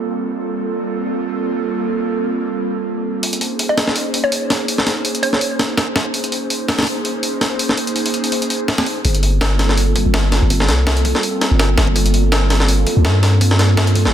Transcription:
0.00 0.30 G3 medium
0.00 0.30 A#3 medium
0.00 0.30 C4 medium
0.00 0.30 F4 medium
0.00 0.30 A4 medium
0.32 3.21 G3 medium
0.32 3.21 A#3 medium
0.32 3.21 C4 medium
0.32 3.21 F4 medium
0.32 3.21 A4 loud
3.23 6.12 A#3 medium
3.23 6.12 C#4 medium
3.23 6.12 D#4 medium
3.23 6.12 G#4 medium
3.23 6.12 C5 loud
3.23 open hi-hat medium
3.33 closed hi-hat soft
3.41 open hi-hat medium
3.59 open hi-hat medium
3.69 3.85 D#5 medium
3.78 snare soft
3.78 open hi-hat medium
3.87 snare soft
3.96 open hi-hat medium
4.14 open hi-hat medium
4.24 4.45 C#5 medium
4.32 open hi-hat medium
4.50 snare soft
4.50 open hi-hat medium
4.68 open hi-hat medium
4.78 snare soft
4.87 snare soft
4.87 open hi-hat medium
5.05 open hi-hat medium
5.15 closed hi-hat soft
5.23 5.51 C#5 medium
5.23 open hi-hat medium
5.33 snare soft
5.41 open hi-hat medium
5.59 snare soft
5.59 open hi-hat medium
5.78 snare medium
5.78 open hi-hat medium
5.96 snare medium
5.96 open hi-hat medium
6.14 9.03 A#3 medium
6.14 9.03 C#4 medium
6.14 9.03 D#4 medium
6.14 9.03 G#4 medium
6.14 9.03 C5 loud
6.14 open hi-hat medium
6.24 closed hi-hat soft
6.32 open hi-hat medium
6.50 open hi-hat medium
6.68 snare loud
6.68 open hi-hat medium
6.78 snare medium
6.78 open hi-hat medium
6.83 snare medium
6.83 open hi-hat medium
6.87 open hi-hat medium
7.05 open hi-hat medium
7.23 open hi-hat medium
7.41 snare soft
7.41 open hi-hat medium
7.59 open hi-hat medium
7.69 snare soft
7.77 open hi-hat medium
7.87 closed hi-hat soft
7.96 open hi-hat medium
8.06 open hi-hat medium
8.14 closed hi-hat soft
8.24 open hi-hat medium
8.32 open hi-hat medium
8.42 closed hi-hat soft
8.50 open hi-hat medium
8.68 snare loud
8.68 open hi-hat medium
8.78 snare medium
8.78 open hi-hat medium
8.86 open hi-hat medium
9.05 10.04 G1 medium
9.05 kick loud
9.05 open hi-hat medium
9.15 closed hi-hat soft
9.23 open hi-hat medium
9.33 10.48 G3 medium
9.33 10.48 A#3 medium
9.33 10.48 C4 medium
9.33 10.48 F4 medium
9.33 10.48 A4 medium
9.41 snare loud
9.41 open hi-hat medium
9.59 snare soft
9.59 open hi-hat medium
9.69 snare soft
9.77 open hi-hat medium
9.96 kick medium
9.96 open hi-hat medium
10.06 10.40 G1 medium
10.14 snare loud
10.14 open hi-hat medium
10.32 snare soft
10.32 open hi-hat medium
10.42 10.70 G1 loud
10.50 kick loud
10.50 open hi-hat medium
10.60 snare soft
10.69 11.13 C2 medium
10.69 snare soft
10.69 open hi-hat medium
10.78 11.94 G3 medium
10.78 11.94 A#3 medium
10.78 11.94 C4 medium
10.78 11.94 F4 medium
10.78 11.94 A4 loud
10.87 snare loud
10.87 open hi-hat medium
10.97 closed hi-hat soft
11.05 kick medium
11.05 open hi-hat medium
11.15 snare soft
11.23 open hi-hat medium
11.41 snare medium
11.41 open hi-hat medium
11.51 11.76 G1 medium
11.59 snare loud
11.59 open hi-hat medium
11.78 12.85 G1 medium
11.78 snare loud
11.78 open hi-hat medium
11.87 kick medium
11.96 kick loud
11.96 open hi-hat medium
12.06 closed hi-hat soft
12.14 open hi-hat medium
12.24 13.39 G3 medium
12.24 13.39 A#3 medium
12.24 13.39 C4 medium
12.24 13.39 F4 medium
12.24 13.39 A4 loud
12.32 snare loud
12.32 open hi-hat medium
12.50 snare soft
12.50 open hi-hat medium
12.60 snare soft
12.68 open hi-hat medium
12.87 kick medium
12.87 open hi-hat medium
12.97 13.06 D2 medium
13.05 14.07 G2 medium
13.05 snare loud
13.05 open hi-hat medium
13.23 snare medium
13.23 open hi-hat medium
13.41 kick loud
13.41 open hi-hat medium
13.51 snare soft
13.59 snare soft
13.59 open hi-hat medium
13.69 14.14 G3 medium
13.69 14.14 A#3 medium
13.69 14.14 C4 medium
13.69 14.14 F4 medium
13.69 14.14 A4 loud
13.77 snare loud
13.77 open hi-hat medium
13.87 closed hi-hat soft
13.95 kick medium
13.95 open hi-hat medium
14.05 14.14 F1 medium
14.05 snare soft

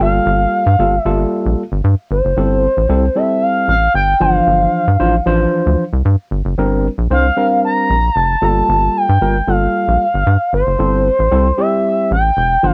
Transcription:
0.00 0.20 G1 loud
0.00 0.64 G3 medium
0.00 0.64 A#3 medium
0.00 0.64 F4 medium
0.00 0.64 A4 medium
0.00 1.00 F5 loud
0.26 0.46 G1 loud
0.66 0.76 G2 medium
0.79 0.99 G1 medium
0.79 0.94 G3 medium
0.79 0.94 A#3 medium
0.79 0.94 F4 medium
0.79 0.94 A4 medium
1.00 1.55 E5 loud
1.05 1.25 G1 medium
1.05 1.62 G3 medium
1.05 1.62 A#3 medium
1.05 1.62 F4 medium
1.05 1.62 A4 loud
1.46 1.55 A#1 medium
1.72 1.81 G1 medium
1.84 1.95 G2 loud
2.11 2.21 G1 loud
2.11 3.18 C5 medium
2.25 2.34 F#1 medium
2.37 2.68 G1 loud
2.37 2.65 G3 medium
2.37 2.65 C4 medium
2.37 2.66 E4 medium
2.37 2.66 A4 medium
2.77 2.87 A1 medium
2.89 3.09 C2 medium
2.89 3.04 G3 medium
2.89 3.04 C4 medium
2.89 3.05 E4 medium
2.89 3.05 A4 medium
3.16 3.72 G3 medium
3.16 3.73 C4 medium
3.16 3.73 E4 medium
3.16 3.73 A4 medium
3.16 3.44 E5 medium
3.42 3.68 F5 loud
3.68 3.88 A1 medium
3.68 3.93 F5 loud
3.95 4.15 G1 medium
3.95 4.23 G5 loud
4.20 4.41 G1 loud
4.20 4.85 E3 medium
4.20 4.85 F3 medium
4.20 4.85 D4 medium
4.20 4.85 C5 medium
4.20 5.79 F5 loud
4.47 4.67 G1 loud
4.88 4.97 G2 medium
4.99 5.20 A1 medium
4.99 5.15 F3 medium
4.99 5.15 D4 medium
4.99 5.15 E4 medium
4.99 5.15 C5 loud
5.26 5.46 A1 medium
5.26 5.83 E3 medium
5.26 5.83 F3 medium
5.26 5.83 D4 medium
5.26 5.83 C5 loud
5.66 5.76 D2 medium
5.93 6.02 C2 medium
6.05 6.16 G2 medium
6.31 6.42 G1 medium
6.45 6.55 F#1 medium
6.58 6.89 G1 loud
6.58 6.86 G3 medium
6.58 6.86 C4 medium
6.58 6.86 D4 medium
6.58 6.87 A#4 medium
6.98 7.08 A#1 medium
7.10 7.31 C2 medium
7.10 7.25 G3 medium
7.10 7.25 C4 medium
7.10 7.26 D4 medium
7.10 7.26 C5 medium
7.10 7.60 F5 loud
7.37 7.93 G3 medium
7.37 7.93 C4 medium
7.37 7.94 D4 medium
7.37 7.94 A#4 medium
7.65 8.16 A#5 loud
7.90 8.10 A#1 medium
8.16 8.36 F1 medium
8.16 8.44 A5 loud
8.42 8.62 G1 loud
8.42 9.06 G3 medium
8.42 9.06 A#3 medium
8.42 9.06 F4 medium
8.42 9.06 A4 medium
8.42 8.99 A5 loud
8.69 8.89 G1 loud
8.97 9.51 G5 loud
9.09 9.18 G2 medium
9.21 9.41 G1 medium
9.21 9.36 G3 medium
9.21 9.36 A#3 medium
9.21 9.36 F4 medium
9.21 9.36 A#4 medium
9.47 9.68 G1 medium
9.47 10.04 G3 medium
9.47 10.04 A#3 medium
9.47 10.04 F4 medium
9.47 10.04 A4 medium
9.47 10.54 F5 loud
9.88 9.97 A#1 medium
10.14 10.24 G1 medium
10.27 10.37 G2 loud
10.53 10.64 G1 medium
10.53 11.62 C5 loud
10.67 10.76 F#1 medium
10.79 11.10 G1 loud
10.79 11.07 G3 medium
10.79 11.07 C4 medium
10.79 11.08 E4 medium
10.79 11.08 A4 medium
11.19 11.29 A1 medium
11.31 11.52 C2 medium
11.31 11.46 G3 medium
11.31 11.46 C4 medium
11.31 11.46 E4 medium
11.31 11.47 A4 medium
11.58 12.14 G3 medium
11.58 12.15 C4 medium
11.58 12.15 E4 medium
11.58 12.15 G4 medium
11.58 12.12 E5 medium
12.11 12.31 A1 medium
12.11 12.67 G5 loud
12.37 12.57 E1 medium
12.63 12.74 G1 medium
12.63 12.74 E3 medium
12.63 12.74 F3 medium
12.63 12.74 D4 medium
12.63 12.74 C5 medium
12.63 12.74 F5 medium

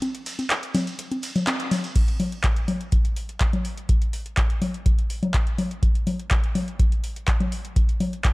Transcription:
0.02 closed hi-hat medium
0.02 ride medium
0.02 high conga medium
0.02 shekere soft
0.15 closed hi-hat soft
0.26 open hi-hat loud
0.26 ride medium
0.26 shekere loud
0.39 closed hi-hat soft
0.39 high conga soft
0.39 shekere medium
0.50 clap loud
0.50 closed hi-hat loud
0.50 ride medium
0.50 shekere soft
0.63 closed hi-hat soft
0.74 open hi-hat loud
0.74 ride medium
0.74 high conga medium
0.74 low conga loud
0.74 shekere medium
0.87 closed hi-hat soft
0.87 shekere medium
0.99 closed hi-hat loud
0.99 ride medium
0.99 shekere soft
1.11 closed hi-hat soft
1.11 high conga soft
1.23 open hi-hat loud
1.23 ride medium
1.23 shekere medium
1.36 closed hi-hat soft
1.36 low conga medium
1.36 shekere medium
1.47 clap loud
1.47 closed hi-hat loud
1.47 ride medium
1.47 high conga medium
1.47 shekere soft
1.60 closed hi-hat soft
1.71 open hi-hat loud
1.71 ride medium
1.71 low conga medium
1.71 shekere medium
1.84 closed hi-hat soft
1.84 shekere medium
1.96 kick loud
1.96 closed hi-hat medium
1.96 crash medium
2.08 closed hi-hat soft
2.20 open hi-hat loud
2.20 low conga medium
2.32 closed hi-hat soft
2.44 kick loud
2.44 clap loud
2.44 closed hi-hat medium
2.56 closed hi-hat soft
2.68 open hi-hat loud
2.68 low conga medium
2.81 closed hi-hat soft
2.92 kick loud
2.92 closed hi-hat medium
3.05 closed hi-hat soft
3.16 open hi-hat loud
3.29 closed hi-hat soft
3.40 kick loud
3.40 clap loud
3.40 closed hi-hat medium
3.53 closed hi-hat soft
3.53 low conga medium
3.65 open hi-hat loud
3.77 closed hi-hat soft
3.89 kick loud
3.89 closed hi-hat medium
4.02 closed hi-hat soft
4.13 open hi-hat loud
4.26 closed hi-hat soft
4.37 kick loud
4.37 clap loud
4.37 closed hi-hat medium
4.50 closed hi-hat soft
4.62 open hi-hat loud
4.62 low conga medium
4.74 closed hi-hat soft
4.86 kick loud
4.86 closed hi-hat medium
4.99 closed hi-hat soft
5.10 open hi-hat loud
5.23 closed hi-hat soft
5.23 low conga medium
5.34 kick loud
5.34 clap loud
5.34 closed hi-hat medium
5.47 closed hi-hat soft
5.58 open hi-hat loud
5.58 low conga medium
5.71 closed hi-hat soft
5.83 kick loud
5.83 closed hi-hat medium
5.95 closed hi-hat soft
6.07 open hi-hat loud
6.07 low conga medium
6.19 closed hi-hat soft
6.31 kick loud
6.31 clap loud
6.31 closed hi-hat medium
6.44 closed hi-hat soft
6.55 open hi-hat loud
6.55 low conga loud
6.68 closed hi-hat soft
6.79 kick loud
6.79 closed hi-hat medium
6.92 closed hi-hat soft
7.04 open hi-hat loud
7.16 closed hi-hat soft
7.28 kick loud
7.28 clap loud
7.28 closed hi-hat medium
7.40 closed hi-hat soft
7.40 low conga medium
7.52 open hi-hat loud
7.65 closed hi-hat soft
7.76 kick loud
7.76 closed hi-hat medium
7.89 closed hi-hat soft
8.00 open hi-hat loud
8.00 low conga medium
8.13 closed hi-hat soft
8.24 kick loud
8.24 clap loud
8.24 closed hi-hat medium

